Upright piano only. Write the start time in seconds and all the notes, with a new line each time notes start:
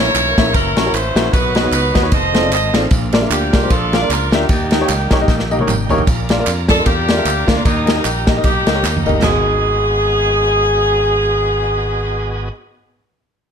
Already playing: A#2
0.01 C#5
0.09 A#3 C#4 E4 A#4 C#5
0.38 A#3 C#4 E4 A#4 E5
0.46 A#3 C#4 E4 A#4 E5
0.77 C#4 E4 F#4 A#4 C#5
0.86 C#4 E4 F#4 A#4 C#5
1.16 C#4 E4 F#4 A#4 E5
1.34 B2
1.55 B3 D#4 F#4 B4 D#5
1.63 B3 D#4 F#4 B4 C#5
1.94 B3 D#4 F#4 B4 D#5
2.02 B3 D#4 F#4 B4 C#5
2.34 C4 D#4 F4 A4 C5
2.42 C4 D#4 F4 A4 D5
2.73 C4 D#4 F4 A4 D5
2.91 A#2
3.13 A#3 D4 F4 A#4 D5
3.22 A#3 D4 F4 A#4 E5
3.53 A#3 D4 F4 A#4 D5
3.63 A#3 D4 F4 A#4 C5
3.93 A#3 D4 F4 A#4 F5
4.02 A#3 D4 F4 A#4 D5
4.33 A#3 D4 F4 A#4 E5
4.50 D#3
4.71 A#3 D#4 G4 A#4 D#5
4.81 A#3 D#4 G4 A#4 C#5
5.12 A#3 D#4 G4 A#4 C#5
5.21 A#3 D#4 G4 A#4 D#5
5.51 A#3 D#4 G4 A#4 D#5
5.60 A#3 D#4 G4 A#4 C#5
5.90 A#3 D#4 G4 A#4 C#5
6.07 A#2
6.30 A#3 D4 F4 A#4 D5
6.39 A#3 D4 F4 A#4 D5
6.70 A#3 D4 F4 A#4 D5
6.79 A#3 D4 F4 A#4 D5
7.09 A#3 D4 F4 A#4 D5
7.17 A#3 D4 F4 A#4 E5
7.47 A#3 D4 F4 A#4 D5
7.56 A#3 D4 F4 A#4 D5
7.65 D#3
7.85 A#3 D#4 G4 A#4 D#5
7.96 A#3 D#4 G4 A#4 D#5
8.27 A#3 D#4 G4 A#4 D#5
8.36 A#3 D#4 G4 A#4 D#5
8.67 A#3 D#4 G4 A#4 D#5
8.74 A#3 D#4 G4 A#4 C#5
9.06 A#3 D#4 G4 A#4 D#5
9.14 A#3 D#4 G4 A#4 D#5
9.22 G#1 B3 D#4 F#4 G#4